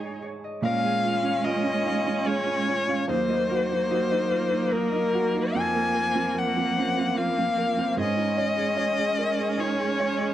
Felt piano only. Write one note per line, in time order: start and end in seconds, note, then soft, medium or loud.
0.00 0.66 G#3 soft
0.00 0.66 D#4 soft
0.00 0.66 G#4 soft
0.62 3.05 A#2 medium
0.83 1.16 G#3 medium
1.03 1.36 F4 medium
1.23 1.56 C#4 medium
1.44 1.77 F4 medium
1.64 1.98 C#4 medium
1.84 2.06 D#4 medium
2.06 2.40 C#4 medium
2.26 2.60 G#3 medium
2.46 2.80 C#4 medium
2.67 3.01 F4 medium
2.87 3.09 C#4 medium
3.08 5.50 D#2 medium
3.29 3.62 A#3 medium
3.51 3.83 F#4 medium
3.71 4.03 D#4 medium
3.91 4.23 F#4 medium
4.12 4.44 D#4 medium
4.31 4.51 F4 medium
4.51 4.84 D#4 medium
4.71 5.05 A#3 medium
4.94 5.27 D#4 medium
5.14 5.48 F#4 medium
5.34 5.55 D#4 medium
5.55 7.93 F2 medium
5.75 6.07 A#3 medium
5.95 6.27 A#4 medium
6.15 6.48 C4 medium
6.34 6.67 A#4 medium
6.56 6.89 C4 medium
6.78 6.97 C#4 soft
6.98 7.30 C4 medium
7.18 7.50 A#3 medium
7.39 7.70 C4 medium
7.58 7.90 A#4 medium
7.77 7.97 C4 soft
7.97 10.34 G#2 medium
8.17 8.49 D#4 medium
8.37 8.69 C#5 medium
8.57 8.89 G#4 medium
8.77 9.09 C#5 medium
8.98 9.30 G#4 medium
9.19 9.38 A#4 soft
9.38 9.70 G#4 soft
9.59 9.90 D#4 medium
9.80 10.11 G#4 medium
10.00 10.31 C#5 medium
10.20 10.34 G#4 medium